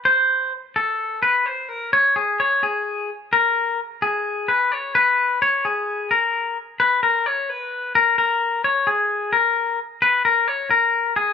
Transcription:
\new Staff \with { instrumentName = "Clean electric guitar" } { \time 7/8 \key gis \minor \tempo 4 = 130 c''4 r8 a'4 b'8 c''8 | ais'8 cis''8 gis'8 cis''8 gis'4 r8 | ais'4 r8 gis'4 b'8 cis''8 | b'4 cis''8 gis'4 ais'4 |
r8 b'8 ais'8 cis''8 b'4 ais'8 | ais'4 cis''8 gis'4 ais'4 | r8 b'8 ais'8 cis''8 ais'4 gis'8 | }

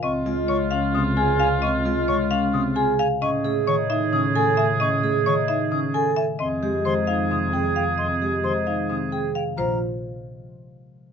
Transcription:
<<
  \new Staff \with { instrumentName = "Flute" } { \time 7/8 \key bes \dorian \tempo 4 = 132 des'''8 r8 des'''8 r8 ees'''8 r8 aes''8 | des'''8 r8 des'''8 r8 ees'''8 r8 aes''8 | cis'''8 r8 cis'''8 r8 ees'''8 r8 gis''8 | cis'''8 r8 cis'''8 r8 ees'''8 r8 gis''8 |
c'''8 r8 c'''8 r8 ees'''8 r8 g''8 | c'''8 r8 c'''8 r8 ees'''8 r8 g''8 | bes''8 r2. | }
  \new Staff \with { instrumentName = "Marimba" } { \time 7/8 \key bes \dorian ees''8 r8 des''8 f''8 r8 aes''8 f''8 | ees''8 r8 des''8 f''8 r8 aes''8 f''8 | ees''8 r8 cis''8 e''8 r8 gis''8 e''8 | ees''8 r8 cis''8 e''8 r8 gis''8 e''8 |
ees''8 r8 c''8 f''8 r8 g''8 f''8 | ees''8 r8 c''8 f''8 r8 g''8 f''8 | c''8 r2. | }
  \new Staff \with { instrumentName = "Oboe" } { \time 7/8 \key bes \dorian f'2.~ f'8~ | f'2. r8 | gis'2.~ gis'8~ | gis'2. r8 |
aes'2.~ aes'8~ | aes'2. r8 | r2. r8 | }
  \new Staff \with { instrumentName = "Vibraphone" } { \time 7/8 \key bes \dorian c'8 f'8 r8 des'8 c'8 aes'8 r8 | c'8 f'8 r8 des'8 c'8 aes'8 r8 | cis'8 gis'8 r8 ees'8 cis'8 a'8 r8 | cis'8 gis'8 r8 ees'8 cis'8 a'8 r8 |
c'8 g'8 r8 ees'8 c'8 aes'8 r8 | c'8 g'8 r8 ees'8 c'8 aes'8 r8 | f'8 r2. | }
  \new Staff \with { instrumentName = "Harp" } { \clef bass \time 7/8 \key bes \dorian f8 aes8 des4 c4.~ | c8 aes8 des4 c4. | r8 a8 ees4 cis4.~ | cis8 a8 ees4 cis4. |
r8 aes8 ees4 c4.~ | c8 aes8 ees4 c4. | f8 r2. | }
  \new Staff \with { instrumentName = "Double bass" } { \clef bass \time 7/8 \key bes \dorian des,2.~ des,8~ | des,2.~ des,8 | a,2.~ a,8~ | a,2.~ a,8 |
f,2.~ f,8~ | f,2.~ f,8 | bes,,8 r2. | }
>>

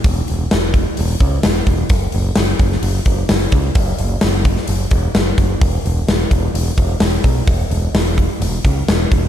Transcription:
<<
  \new Staff \with { instrumentName = "Picked electric bass" } { \clef bass \time 4/4 \key e \lydian \tempo 4 = 129 e,,8 e,,8 e,,4 e,,8 cis,8 e,,8 e,,8 | fis,,8 fis,,8 fis,,8 fis,,8 fis,,8 fis,,8 fis,,8 cis,8 | fis,,8 fis,,8 fis,,4 fis,,8 e,,8 fis,,8 fis,,8 | e,,8 e,,8 e,,8 e,,8 e,,8 e,,8 e,,8 b,,8 |
e,,8 e,,8 e,,4 e,,8 cis,8 e,,8 e,,8 | }
  \new DrumStaff \with { instrumentName = "Drums" } \drummode { \time 4/4 <hho bd>8 hho8 <hho sn>8 <hho bd>8 hho8 <hho bd>8 <hho sn>8 <hho bd>8 | <hho bd>8 hho8 <hho sn>8 <hho bd>16 sn16 hho8 <hho bd>8 <hho sn>8 <hho bd>8 | <hho bd>8 hho8 <hho sn>8 <hho bd>16 sn16 hho8 <hho bd>8 <hho sn>8 <hho bd>8 | <hho bd>8 hho8 <hho sn>8 <hho bd>8 hho8 <hho bd>8 <hho sn>8 <hho bd>8 |
<hho bd>8 hho8 <hho sn>8 <hho bd>8 hho8 <hho bd>8 <hho sn>8 <hho bd>8 | }
>>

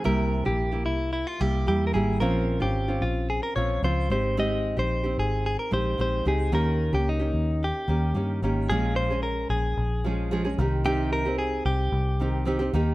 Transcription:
<<
  \new Staff \with { instrumentName = "Clean electric guitar" } { \time 4/4 \key c \phrygian \tempo 4 = 111 bes'8. g'8. e'8 e'16 f'16 g'8 g'16. bes'32 aes'8 | bes'8. g'8. f'8 aes'16 bes'16 des''8 c''8 c''8 | ees''8. c''8. aes'8 aes'16 bes'16 c''8 c''8 aes'8 | bes'8. g'16 ees'4 g'4. r8 |
aes'8 c''8 bes'8 aes'2 r8 | g'8 bes'8 aes'8 g'2 r8 | }
  \new Staff \with { instrumentName = "Nylon-string guitar" } { \time 4/4 \key c \phrygian <c g bes e' g'>8. <bes e' g'>8 <bes e' g'>4~ <bes e' g'>16 <g bes e' g'>8 <g bes e' g'>8 <g bes e' g'>8 | <bes, f c' des' f'>8. <c' des' f'>8 <c' des' f'>4~ <c' des' f'>16 <f c' des' f'>8 <f c' des' f'>8 <aes c' ees' g'>8 | <aes c' ees' g'>8. <c' ees' g'>8 <c' ees' g'>4~ <c' ees' g'>16 <aes c' ees' g'>8 <aes c' ees' g'>8 <aes c' ees' g'>8 | <ees bes des' g'>8. <bes des' g'>8 <bes des' g'>4~ <bes des' g'>16 <ees bes des' g'>8 <ees bes des' g'>8 <ees bes des' g'>8 |
<bes, f aes des' aes'>8. <aes des' aes'>4.~ <aes des' aes'>16 <f aes des' aes'>8 <f aes des' aes'>16 <aes des' aes'>16 <ees c' ees' g'>8 | <c ees c' ees' g'>8. <c' ees' g'>4.~ <c' ees' g'>16 <ees c' ees' g'>8 <ees c' ees' g'>16 <c' ees' g'>16 <ees bes ees' g'>8 | }
  \new Staff \with { instrumentName = "Fingered electric bass" } { \clef bass \time 4/4 \key c \phrygian c,8. bes,,8. c,8. r16 c,8 e,8 aes,,8 | bes,,8. aes,,8. bes,,8. r16 bes,,8 des,8 aes,,8~ | aes,,8. bes,,8. aes,,8. r16 bes,,8 bes,,8 des,8 | ees,8. des,8. ees,8. r16 ees,8 g,8 aes,,8 |
bes,,4. bes,,8 bes,,4. c,8~ | c,4. c,8 c,4. ees,8 | }
>>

